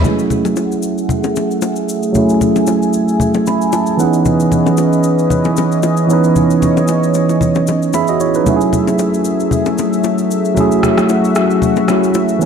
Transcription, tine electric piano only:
0.02 2.10 F#3 medium
0.02 0.11 G#3 medium
0.02 2.11 C#4 medium
0.07 2.13 A3 medium
0.07 2.12 E4 medium
0.07 2.13 G#4 medium
2.12 3.94 F#3 medium
2.12 3.95 A3 medium
2.12 3.96 C#4 medium
2.17 3.96 E4 medium
2.17 3.97 G#4 medium
3.47 3.71 B5 medium
3.73 3.98 A5 medium
3.97 6.05 E3 medium
3.97 6.05 B3 medium
3.97 6.06 C#4 medium
3.97 4.24 F#5 medium
4.02 6.07 D#4 medium
4.02 6.08 G#4 medium
6.07 8.15 E3 medium
6.07 8.16 B3 medium
6.07 8.16 C#4 medium
6.12 7.65 D#4 medium
6.12 7.66 B4 medium
7.94 8.08 G#4 medium
7.94 8.08 E5 medium
7.94 8.43 B5 medium
8.09 8.20 F#4 medium
8.09 8.20 D#5 medium
8.21 8.35 E4 medium
8.21 8.34 C#5 medium
8.35 8.60 D#4 medium
8.35 8.60 B4 medium
8.44 10.52 F#3 medium
8.44 10.52 A3 medium
8.44 10.53 C#4 medium
8.49 10.54 E4 medium
8.49 8.55 F#4 medium
8.56 10.58 G#4 medium
10.54 11.85 F#3 medium
10.54 11.85 A3 medium
10.54 11.86 C#4 medium
10.59 11.87 E4 medium
10.59 11.88 G#4 medium
11.87 12.41 F#3 medium
11.87 12.41 A3 medium
11.87 12.40 C#4 medium
11.87 12.42 E4 soft
11.87 12.42 F#4 medium
12.39 12.46 E3 medium
12.39 12.46 B3 medium
12.39 12.46 C#4 medium

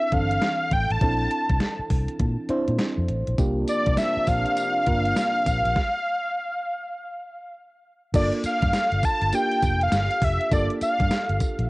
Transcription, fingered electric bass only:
0.12 0.37 G1 medium
0.71 0.87 A1 medium
0.90 0.99 A1 medium
1.01 1.26 A#1 loud
1.50 1.59 C2 medium
1.79 muted fingered electric bass stroke soft
1.90 2.06 C2 medium
2.20 2.35 A#2 loud
2.49 muted fingered electric bass stroke soft
2.68 2.77 A#2 medium
2.98 3.07 F2 medium
3.08 3.24 A1 medium
3.28 3.37 A#1 medium
3.38 3.63 C2 loud
3.87 3.96 C2 loud
4.17 muted fingered electric bass stroke soft
4.27 4.43 A#1 medium
4.87 5.12 G1 medium
5.46 5.62 A#1 loud
5.65 5.74 A#1 loud
8.14 8.29 G1 loud
8.44 muted fingered electric bass stroke medium
8.62 8.71 G2 medium
8.92 9.01 G1 medium
9.22 9.31 G1 medium
9.63 9.87 F1 medium
9.92 10.08 G1 medium
10.22 10.37 F1 medium
10.51 10.67 G1 loud
10.82 muted fingered electric bass stroke soft
11.00 11.09 G2 medium
11.29 11.39 G1 medium
11.59 11.68 A#1 medium

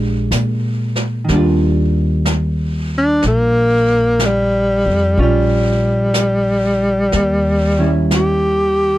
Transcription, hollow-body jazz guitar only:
0.00 1.27 G#3 soft
0.00 1.30 D4 soft
0.00 1.32 G4 soft
1.25 5.15 D#3 soft
1.29 5.17 G3 soft
1.29 5.19 D4 soft
1.36 5.19 F4 soft
5.19 7.13 C#4 soft
5.19 7.13 F4 soft
7.79 8.98 D#3 soft
7.79 8.98 G3 soft
7.79 8.98 C#4 soft
7.79 8.98 E4 soft

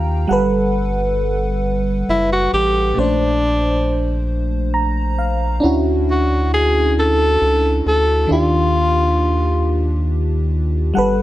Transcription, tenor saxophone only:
2.10 2.29 E4 medium
2.32 2.52 F#4 loud
2.54 3.01 G4 loud
2.99 4.31 D4 medium
6.10 6.50 F#4 medium
6.54 6.94 G#4 loud
6.99 7.83 A4 loud
7.88 8.28 A4 loud
8.32 10.04 F4 loud

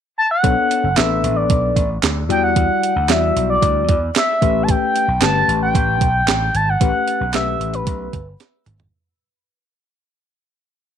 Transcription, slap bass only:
0.44 0.54 B1 loud
0.84 0.94 F#1 medium
0.97 1.18 A1 medium
1.24 1.44 A1 loud
1.50 1.70 B1 medium
1.76 1.97 A1 loud
2.03 2.23 D2 medium
2.29 2.50 E2 loud
2.56 2.66 E2 loud
2.96 3.09 D2 medium
3.09 3.30 E2 medium
3.36 3.56 B1 medium
3.62 3.83 D2 medium
3.88 4.09 E2 medium
4.42 4.73 A1 medium
5.08 5.18 B1 medium
5.21 5.42 G1 loud
5.48 5.69 A1 medium
5.75 5.95 A1 medium
6.01 6.22 B1 medium
6.28 6.48 A1 medium
6.54 6.75 G#1 medium
6.81 6.91 A1 loud
7.21 7.31 B1 medium
7.34 7.54 B1 medium
7.60 7.81 A1 medium
7.87 8.07 B1 medium
8.13 8.34 G1 medium
8.66 8.87 G#1 medium

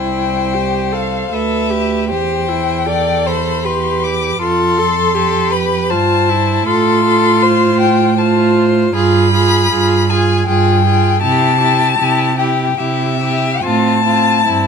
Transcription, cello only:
0.00 1.29 C2 soft
1.32 2.12 D2 soft
2.11 4.41 E2 soft
4.42 5.93 F2 soft
5.92 6.67 G2 soft
6.68 8.91 A2 medium
8.95 9.62 G2 medium
9.72 10.39 G2 medium
10.47 11.13 G2 medium
11.23 11.90 C3 medium
12.00 12.69 C3 medium
12.78 13.54 C3 medium
13.64 14.36 A2 medium
14.46 14.67 G2 soft

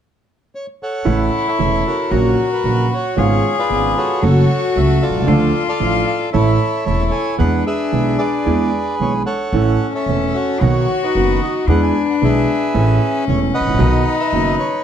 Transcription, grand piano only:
1.05 1.28 A1 medium
1.05 1.28 A2 medium
1.05 1.28 C#3 medium
1.05 1.28 E3 medium
1.05 1.28 A3 medium
1.05 1.28 E4 medium
1.58 1.82 E1 soft
1.58 1.82 E2 soft
1.58 1.81 C#3 soft
1.58 1.81 E3 soft
1.58 1.81 A3 soft
1.58 1.81 E4 soft
2.12 2.35 A#1 medium
2.12 2.35 A#2 medium
2.12 2.35 C#3 medium
2.12 2.34 F#3 medium
2.12 2.35 A#3 medium
2.12 2.35 F#4 medium
2.65 2.87 A#1 soft
2.65 2.87 A#2 soft
2.65 2.87 C#3 soft
2.65 2.87 F#3 soft
2.65 2.87 A#3 soft
2.65 2.87 F#4 soft
3.16 3.39 G#1 medium
3.16 3.40 G#2 medium
3.16 3.39 C#3 medium
3.16 3.39 G#3 medium
3.16 3.39 B3 medium
3.16 3.39 F4 medium
3.70 3.92 G#1 soft
3.70 3.93 G#2 soft
3.70 3.92 C#3 soft
3.70 3.92 G#3 soft
3.70 3.93 B3 soft
3.70 3.92 F4 soft
4.22 4.45 F#2 medium
4.22 4.45 F#3 medium
4.22 4.45 A3 medium
4.22 4.45 C#4 soft
4.22 4.45 A4 medium
4.76 4.98 C#2 soft
4.76 4.98 C#3 soft
4.76 4.98 F#3 soft
4.76 4.98 A3 soft
4.76 4.98 C#4 soft
4.76 4.98 A4 soft
5.09 5.15 B1 soft
5.15 5.22 C2 soft
5.21 5.28 C#2 medium
5.26 5.50 D2 medium
5.26 5.50 D3 medium
5.26 5.49 F3 medium
5.26 5.50 A3 medium
5.26 5.49 D4 medium
5.26 5.50 A4 medium
5.79 6.02 A1 soft
5.79 6.02 A2 soft
5.79 6.02 F3 soft
5.79 6.02 A3 soft
5.79 6.02 D4 soft
5.79 6.03 A4 soft
6.33 6.56 A1 medium
6.33 6.56 A2 medium
6.33 6.56 E3 medium
6.33 6.56 A3 medium
6.33 6.56 C#4 medium
6.33 6.56 A4 medium
6.86 7.08 E1 soft
6.86 7.08 E2 soft
6.86 7.08 E3 soft
6.86 7.08 A3 soft
6.86 7.09 C#4 soft
6.86 7.08 A4 soft
7.38 7.61 E2 medium
7.38 7.61 E3 medium
7.38 7.61 G#3 medium
7.38 7.61 B3 medium
7.38 7.61 G#4 medium
7.92 8.15 B1 soft
7.92 8.15 B2 soft
7.92 8.14 E3 soft
7.92 8.15 G#3 soft
7.92 8.15 B3 soft
7.92 8.15 G#4 soft
8.46 8.69 E2 medium
8.46 8.69 E3 medium
8.46 8.68 G#3 medium
8.46 8.68 B3 soft
8.46 8.69 G#4 medium
9.00 9.23 B1 soft
9.00 9.23 B2 soft
9.00 9.23 E3 soft
9.00 9.23 G#3 soft
9.00 9.23 B3 soft
9.00 9.23 G#4 soft
9.54 9.77 A1 medium
9.54 9.77 A2 medium
9.54 9.76 E3 medium
9.54 9.77 A3 medium
9.54 9.76 C#4 medium
9.54 9.77 A4 medium
10.08 10.31 E1 soft
10.08 10.31 E2 soft
10.08 10.31 E3 soft
10.08 10.31 A3 soft
10.08 10.31 C#4 soft
10.08 10.31 A4 soft
10.62 10.85 B1 medium
10.62 10.85 B2 medium
10.62 10.85 D#3 medium
10.62 10.85 F#3 medium
10.62 10.84 B3 soft
10.62 10.85 F#4 medium
11.16 11.38 F#1 soft
11.16 11.38 F#2 soft
11.16 11.38 D#3 soft
11.16 11.38 F#3 soft
11.16 11.39 B3 soft
11.16 11.38 F#4 soft
11.69 11.92 E2 medium
11.69 11.91 E3 medium
11.69 11.91 G#3 medium
11.69 11.91 B3 medium
11.69 11.92 G#4 medium
12.21 12.44 B1 soft
12.21 12.44 B2 medium
12.21 12.44 E3 soft
12.21 12.44 G#3 soft
12.21 12.44 B3 soft
12.21 12.45 G#4 soft
12.74 12.97 A1 medium
12.74 12.97 A2 medium
12.74 12.96 E3 medium
12.74 12.97 A3 medium
12.74 12.97 C#4 medium
12.74 12.97 A4 medium
13.28 13.50 E1 soft
13.28 13.50 E2 soft
13.28 13.50 E3 soft
13.28 13.50 A3 soft
13.28 13.50 C#4 soft
13.28 13.50 A4 soft
13.61 13.67 G#1 soft
13.68 13.74 A1 medium
13.73 13.80 A#1 medium
13.78 14.02 B1 medium
13.78 14.01 B2 medium
13.78 14.01 D#3 medium
13.78 14.01 F#3 medium
13.78 14.01 B3 medium
13.78 14.02 F#4 medium
14.33 14.55 F#1 soft
14.33 14.55 F#2 medium
14.33 14.55 D#3 soft
14.33 14.55 F#3 soft
14.33 14.55 B3 soft
14.33 14.56 F#4 soft

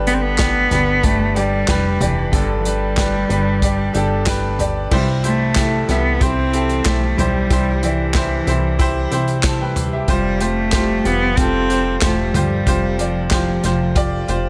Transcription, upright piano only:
0.00 0.68 G2 medium
0.00 0.68 D3 medium
0.00 0.07 D4 medium
0.00 0.08 G4 medium
0.00 2.34 A4 medium
0.00 0.09 B4 medium
0.00 4.93 G5 medium
0.00 4.93 A5 medium
0.07 0.37 D4 medium
0.07 0.38 G4 medium
0.07 0.38 B4 medium
0.38 0.69 D4 medium
0.38 0.70 G4 medium
0.38 0.70 B4 medium
0.71 1.02 D4 medium
0.71 1.02 G4 medium
0.71 1.03 B4 medium
1.03 1.33 D4 medium
1.03 1.34 G4 medium
1.03 1.35 B4 medium
1.35 1.66 D4 medium
1.35 1.67 G4 medium
1.35 1.67 D5 medium
1.67 1.98 D4 medium
1.67 1.99 G4 medium
1.67 1.99 B4 medium
2.00 2.30 D4 medium
2.00 2.31 G4 medium
2.00 2.32 D5 medium
2.32 3.26 G2 medium
2.32 3.26 D3 medium
2.32 2.63 D4 medium
2.32 2.63 G4 medium
2.32 2.64 A4 medium
2.65 2.95 D4 medium
2.65 2.96 G4 soft
2.65 2.96 B4 medium
2.97 3.28 D4 medium
2.97 3.28 G4 medium
2.97 3.29 B4 medium
3.29 3.60 D4 medium
3.29 3.61 G4 medium
3.29 3.61 B4 medium
3.62 3.92 D4 medium
3.62 3.93 G4 medium
3.62 3.94 D5 medium
3.94 4.24 D4 medium
3.94 4.25 G4 medium
3.94 4.25 A4 medium
4.26 4.57 D4 medium
4.26 4.57 G4 medium
4.26 4.58 B4 loud
4.59 4.89 D4 medium
4.59 4.90 G4 medium
4.59 4.90 D5 medium
4.91 5.85 G2 medium
4.91 5.22 E4 medium
4.91 5.22 G4 medium
4.91 5.22 C5 medium
5.23 5.54 E4 medium
5.23 5.54 G4 medium
5.23 5.55 C5 medium
5.56 5.87 E4 medium
5.56 5.87 G4 medium
5.56 5.87 A4 medium
5.89 6.18 E4 medium
5.89 6.19 G4 medium
5.89 6.20 E5 medium
6.20 6.51 E4 medium
6.20 6.51 G4 medium
6.20 6.52 C5 medium
6.52 6.83 E4 medium
6.52 6.84 G4 medium
6.52 6.84 A4 medium
6.85 7.15 E4 medium
6.85 7.16 G4 medium
6.85 7.16 C5 medium
7.17 7.48 E4 medium
7.17 7.48 G4 medium
7.17 7.49 C5 medium
7.50 8.44 G2 medium
7.50 7.80 E4 medium
7.50 7.81 G4 medium
7.50 7.81 C5 medium
7.83 8.13 E4 medium
7.83 8.14 G4 medium
7.83 8.14 D5 medium
8.14 8.45 E4 medium
8.14 8.45 G4 medium
8.14 8.46 C5 medium
8.47 8.77 E4 medium
8.47 8.78 G4 medium
8.47 8.78 C5 medium
8.79 9.09 E4 loud
8.79 9.10 G4 loud
8.79 9.10 C5 loud
9.11 9.42 E4 medium
9.11 9.42 G4 medium
9.11 9.43 C5 medium
9.45 9.60 C5 soft
9.45 9.60 A5 medium
9.61 9.91 B4 medium
9.61 9.91 G5 medium
9.93 10.07 G4 soft
9.93 10.23 E5 medium
10.08 11.01 C3 medium
10.08 10.38 F4 medium
10.08 10.39 G4 medium
10.08 10.39 C5 loud
10.40 10.71 F4 medium
10.40 10.71 G4 medium
10.40 10.72 C5 medium
10.73 11.03 F4 medium
10.73 11.04 G4 medium
10.73 11.04 C5 medium
11.05 11.35 F4 medium
11.05 11.36 G4 medium
11.37 11.67 F4 medium
11.37 11.68 G4 medium
11.37 11.69 A4 medium
11.69 12.00 F4 medium
11.69 12.00 G4 medium
11.69 12.01 C5 medium
12.01 12.32 F4 medium
12.01 12.33 G4 medium
12.01 12.33 C5 medium
12.34 12.65 F4 medium
12.34 12.65 G4 medium
12.34 12.66 C5 medium
12.66 13.60 C3 medium
12.66 12.97 F4 medium
12.66 12.98 G4 medium
12.66 12.98 C5 medium
12.99 13.29 F4 medium
12.99 13.30 G4 medium
12.99 13.30 D5 medium
13.31 13.62 F4 medium
13.31 13.62 G4 medium
13.31 13.63 C5 medium
13.63 13.94 F4 medium
13.63 13.94 G4 medium
13.63 13.95 C5 medium
13.95 14.26 F4 loud
13.95 14.27 G4 medium
13.95 14.27 D5 loud
14.28 14.49 F4 medium
14.28 14.49 G4 medium
14.28 14.49 C5 medium

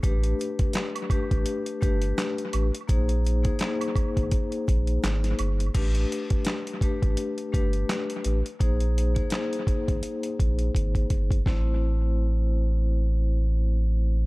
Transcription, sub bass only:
0.04 0.34 A1 loud
1.31 1.44 A1 medium
1.83 2.13 G1 medium
2.54 2.71 A1 medium
2.89 3.50 A#1 loud
4.17 4.30 G#1 loud
4.68 4.98 A#1 medium
5.04 5.34 G#1 medium
5.39 5.70 G1 medium
5.75 6.05 A1 loud
7.03 7.16 A1 loud
7.54 7.84 G1 medium
8.25 8.42 A1 loud
8.61 9.22 A#1 loud
9.89 10.01 G#1 medium
10.40 10.70 A#1 medium
10.75 11.05 G#1 loud
11.11 11.41 G1 medium
11.46 14.26 A1 loud

